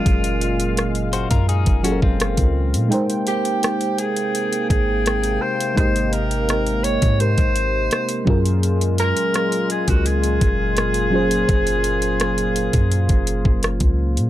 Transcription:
Already playing: A#2 F#3 G#3 C#4 F4 G#4 A#4 F5
0.06 F#1, kick, closed hi-hat
0.24 closed hi-hat
0.41 closed hi-hat
0.60 closed hi-hat
0.77 cross-stick, closed hi-hat
0.95 closed hi-hat
1.13 F#4 C5, closed hi-hat
1.31 F#2 F4 A#4, kick, closed hi-hat
1.49 D#4 G#4, closed hi-hat
1.66 F#1, kick, closed hi-hat
1.83 F#3 C#4 F4 F#4 G#4 A4, closed hi-hat
1.92 A#4
2.02 F#1 C4 F4, kick
2.20 cross-stick, closed hi-hat
2.37 C#2, kick, closed hi-hat
2.74 A#2, closed hi-hat
2.89 C3 G#3 A#3 D#4 G5, closed hi-hat
2.93 A#4 C5
3.10 closed hi-hat
3.27 G4, closed hi-hat
3.45 closed hi-hat
3.63 cross-stick, closed hi-hat
3.81 closed hi-hat
3.98 G#4, closed hi-hat
4.16 closed hi-hat
4.35 closed hi-hat
4.53 closed hi-hat
4.70 G#1 G#4, kick, closed hi-hat
5.06 cross-stick, closed hi-hat
5.24 closed hi-hat
5.41 C5
5.61 closed hi-hat
5.75 G#1 G#3 D#4 G4 A#4 C5, kick, closed hi-hat
5.80 D#5
5.96 closed hi-hat
6.13 A#4, closed hi-hat
6.31 closed hi-hat
6.49 cross-stick, closed hi-hat
6.67 closed hi-hat
6.84 C#5, closed hi-hat
7.02 G#2, kick, closed hi-hat
7.19 G#3 D#4 G4 A#4 C5, closed hi-hat
7.38 G#1, kick, closed hi-hat
7.56 closed hi-hat
7.91 cross-stick, closed hi-hat
8.09 closed hi-hat
8.25 F#2 A#2 F#3 G#3 C#4 F4 G#4, kick
8.30 A#4
8.46 closed hi-hat
8.63 closed hi-hat
8.81 closed hi-hat
8.98 A#4, closed hi-hat
9.17 closed hi-hat
9.34 cross-stick, closed hi-hat
9.52 closed hi-hat
9.70 G#4, closed hi-hat
9.88 C#2 F#4, kick, closed hi-hat
10.06 G#4, closed hi-hat
10.23 closed hi-hat
10.41 F#1, kick, closed hi-hat
10.77 cross-stick, closed hi-hat
10.94 closed hi-hat
11.10 F#3 A#3 C#4 F4 G#4
11.15 C5
11.31 closed hi-hat
11.49 F#1, kick, closed hi-hat
11.67 closed hi-hat
11.84 closed hi-hat
12.02 closed hi-hat
12.20 cross-stick, closed hi-hat
12.38 closed hi-hat
12.56 closed hi-hat
12.73 F#2, kick, closed hi-hat
12.92 closed hi-hat
13.09 F#1, kick, closed hi-hat
13.27 closed hi-hat
13.45 F#1, kick
13.63 cross-stick, closed hi-hat
13.80 C#2, kick, closed hi-hat
14.17 A#2, closed hi-hat

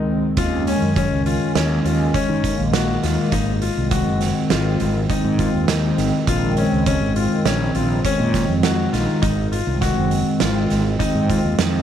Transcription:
Already playing: C#2 D#3 G#3 C4 D#4
0.37 D#2 D#3 G#3 C#4 F4, kick, closed hi-hat
0.67 C#4, closed hi-hat
0.82 F#2
0.96 C#4, kick, closed hi-hat
1.11 C#2 D#3 G#3 C#4
1.26 F4, closed hi-hat
1.55 D#2 C#4, snare, closed hi-hat
1.70 D#3 G#3 C#4
1.85 D#2 F4, closed hi-hat
2.14 C#4, kick, closed hi-hat
2.29 D#3
2.44 D#3 G#3 A#3, kick, closed hi-hat
2.59 A#1
2.73 F#4, snare, closed hi-hat
3.03 D#2 D#3 G#3 A#3 F4, snare, closed hi-hat
3.32 G#1 D#4, kick, closed hi-hat
3.62 F4, closed hi-hat
3.77 C2 D#3 G#3 C4
3.91 F#4, kick, closed hi-hat
4.07 F#1
4.21 snare, closed hi-hat
4.36 D#3 G#3 C4
4.50 G#1 F4, snare, closed hi-hat
4.80 G#1, closed hi-hat
5.10 D#3 G#3 C4 D#4, kick, closed hi-hat
5.25 G#2
5.39 F4, kick, closed hi-hat
5.54 D#2
5.68 D#3 G#3 C4 D#4, snare, closed hi-hat
5.98 G#1, snare, closed hi-hat
6.27 A#1 D#3 G#3 C4 F4, kick, closed hi-hat
6.57 C#4, closed hi-hat
6.72 C#2
6.86 C#4, kick, closed hi-hat
7.01 G#1 D#3 G#3 C4
7.16 F4, closed hi-hat
7.45 A#1 C#4, snare, closed hi-hat
7.60 D#3 G#3 C4
7.75 A#1 F4, closed hi-hat
8.05 C#4, kick, closed hi-hat
8.20 A#2
8.33 D#3 G#3 C4, kick, snare, closed hi-hat
8.49 F2
8.63 F#4, snare, closed hi-hat
8.93 A#1 D#3 G#3 D#4 F4, snare, closed hi-hat
9.22 G#1 D#4, kick, closed hi-hat
9.52 F4, closed hi-hat
9.67 C2 D#3 G#3 C4
9.81 F#4, kick, snare, closed hi-hat
9.97 F#1
10.11 closed hi-hat
10.26 D#3 G#3 C4
10.40 G#1 F4, snare, closed hi-hat
10.70 G#1, snare, closed hi-hat
10.99 D#3 G#3 C4 D#4, kick, closed hi-hat
11.15 G#2
11.30 F4, kick, closed hi-hat
11.45 D#2
11.58 F2 D#3 G#3 C4 D#4, snare, closed hi-hat

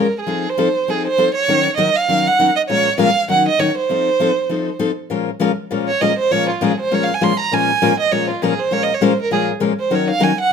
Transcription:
0.00 A#4
0.21 G#4
0.27 F3 C4 D#4 A4
0.50 C5
0.58 F3 C4 D#4 A4
0.88 F3 C4 D#4 G#4 A4
1.08 C5
1.18 F3 C4 D#4 A4
1.35 C#5
1.48 D#3 F#3 C#4 D#4 A#4
1.77 D#3 F#3 C#4 D#4 A#4 D#5
1.97 F5
2.08 D#3 F#3 C#4 D#4 A#4
2.27 F#5
2.39 D#3 F#3 C#4 D#4 A#4
2.56 D#5
2.69 A#2 F3 G#3 C#4 F4 A#4 C#5
2.98 A#2 F3 G#3 C#4 F4 A#4 F5
3.28 D#3 F#3 C#4 D#4 A#4 F#5
3.48 D#5
3.59 D#3 F#3 C#4 D#4 A#4 C#5
3.78 C5
3.89 F3 C4 D#4 A4
4.20 F3 C4 D#4 A4
4.49 F3 C4 D#4 A4
4.79 F3 C4 D#4 A4
5.10 A#2 F3 G#3 C#4 F4 A#4
5.40 A#2 F3 G#3 C#4 F4 A#4
5.71 A#2 F3 G#3 C#4 F4 A#4
5.88 C#5
6.01 A#2 F3 G#3 C#4 F4 A#4 D#5
6.19 C5
6.31 A#2 F3 G#3 C#4 F4 A#4 C#5
6.50 F4
6.61 A#2 F3 G#3 C#4 F4 G#4 A#4
6.81 C5
6.91 A#2 F3 G#3 C#4 F4 A#4 C#5
7.03 F5
7.14 G#5
7.21 A#2 F3 G#3 C#4 F4 A#4 C6
7.40 A#5
7.52 A#2 F3 G#3 C#4 F4 A#4 G#5
7.82 A#2 F3 G#3 C#4 F4 A#4
8.00 D#5
8.11 A#2 F3 G#3 C#4 F4 A#4 C#5
8.30 F4
8.42 A#2 F3 G#3 C#4 F4 G#4 A#4
8.60 C5
8.71 A#2 F3 G#3 C#4 F4 A#4 C#5
8.83 D#5
8.95 C#5
9.01 A#2 F3 G#3 C#4 F4 A#4 C5
9.21 A#4
9.31 A#2 F3 G#3 C#4 F4 G#4 A#4
9.60 A#2 F3 G#3 C#4 F4 A#4
9.80 C5
9.90 D#3 F#3 C#4 D#4 A#4
9.95 C#5
10.10 F5
10.19 D#3 F#3 C#4 D#4 A#4
10.24 G#5
10.41 F#5

